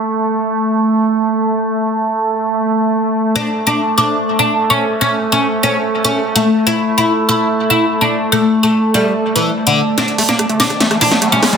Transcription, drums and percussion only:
9.98 snare soft
9.98 closed hi-hat loud
10.08 closed hi-hat soft
10.18 cross-stick soft
10.18 open hi-hat loud
10.29 snare soft
10.29 closed hi-hat soft
10.39 cross-stick medium
10.39 closed hi-hat medium
10.49 closed hi-hat soft
10.60 snare medium
10.60 open hi-hat loud
10.70 cross-stick soft
10.70 closed hi-hat soft
10.80 snare medium
10.80 closed hi-hat loud
10.91 cross-stick medium
10.91 closed hi-hat soft
11.01 open hi-hat loud
11.11 snare soft
11.11 closed hi-hat soft
11.22 cross-stick soft
11.22 closed hi-hat medium
11.32 closed hi-hat soft
11.43 cross-stick medium
11.43 snare medium
11.43 open hi-hat loud
11.53 closed hi-hat soft

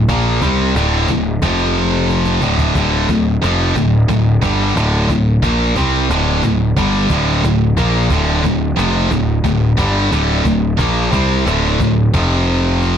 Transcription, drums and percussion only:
0.08 cajon bass loud
0.42 cajon bass loud
0.76 cajon slap loud
1.08 cajon bass medium
1.42 cajon bass loud
2.10 cajon slap medium
2.25 cajon slap medium
2.42 cajon bass medium
2.59 cajon bass medium
2.75 cajon bass loud
3.09 cajon bass medium
3.44 cajon slap loud
3.76 cajon bass medium
4.09 cajon bass medium
4.43 cajon bass loud
4.77 cajon slap loud
5.09 cajon bass medium
5.43 cajon bass loud
5.76 cajon bass loud
6.11 cajon slap loud
6.43 cajon bass medium
6.77 cajon bass loud
7.10 cajon bass loud
7.44 cajon slap loud
7.77 cajon bass loud
8.10 cajon bass medium
8.44 cajon bass medium
8.79 cajon slap loud
9.11 cajon bass medium
9.44 cajon bass medium
9.78 cajon bass loud
10.13 cajon slap loud
10.45 cajon bass medium
10.79 cajon bass loud
11.13 cajon bass loud
11.47 cajon slap loud
11.80 cajon bass medium
12.14 cajon bass loud
12.82 cajon slap medium

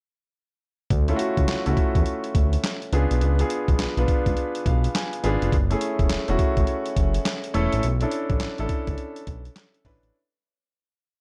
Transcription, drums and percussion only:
0.90 kick loud
0.90 closed hi-hat medium
1.08 closed hi-hat soft
1.19 closed hi-hat medium
1.37 kick medium
1.37 closed hi-hat soft
1.48 snare loud
1.48 clap medium
1.48 closed hi-hat medium
1.66 closed hi-hat soft
1.77 kick medium
1.77 closed hi-hat medium
1.95 kick medium
1.95 closed hi-hat medium
2.06 closed hi-hat medium
2.24 closed hi-hat soft
2.35 kick medium
2.35 closed hi-hat medium
2.53 closed hi-hat medium
2.64 snare loud
2.64 clap loud
2.64 closed hi-hat medium
2.82 closed hi-hat soft
2.93 closed hi-hat medium
3.11 closed hi-hat medium
3.21 closed hi-hat medium
3.39 closed hi-hat medium
3.50 closed hi-hat medium
3.68 kick medium
3.68 closed hi-hat soft
3.79 snare loud
3.79 clap medium
3.79 closed hi-hat medium
3.97 closed hi-hat soft
4.08 kick medium
4.08 closed hi-hat medium
4.26 kick medium
4.26 closed hi-hat soft
4.37 closed hi-hat medium
4.55 closed hi-hat medium
4.66 kick medium
4.66 closed hi-hat medium
4.84 closed hi-hat medium
4.95 snare loud
4.95 clap loud
4.95 closed hi-hat medium
5.13 closed hi-hat soft
5.24 closed hi-hat medium
5.42 closed hi-hat medium
5.52 kick loud
5.52 closed hi-hat medium
5.71 closed hi-hat medium
5.81 closed hi-hat medium
5.99 kick medium
5.99 closed hi-hat soft
6.10 snare loud
6.10 clap medium
6.10 closed hi-hat medium
6.28 closed hi-hat medium
6.39 kick medium
6.39 closed hi-hat medium
6.57 kick medium
6.57 closed hi-hat medium
6.67 closed hi-hat medium
6.86 closed hi-hat soft
6.97 kick medium
6.97 closed hi-hat medium
7.14 closed hi-hat medium
7.25 snare loud
7.25 clap loud
7.25 closed hi-hat medium
7.44 closed hi-hat soft
7.54 closed hi-hat medium
7.72 closed hi-hat medium
7.83 closed hi-hat medium
8.01 closed hi-hat medium
8.11 closed hi-hat medium
8.30 kick medium
8.30 closed hi-hat soft
8.40 snare loud
8.40 clap medium
8.40 closed hi-hat medium
8.58 closed hi-hat soft
8.69 kick medium
8.69 closed hi-hat medium
8.87 kick medium
8.87 closed hi-hat medium
8.98 closed hi-hat medium
9.16 closed hi-hat soft
9.27 kick medium
9.27 closed hi-hat medium
9.45 closed hi-hat medium
9.56 snare loud
9.56 clap loud
9.56 closed hi-hat medium
9.74 closed hi-hat soft
9.85 kick medium
9.85 open hi-hat medium
10.03 closed hi-hat medium

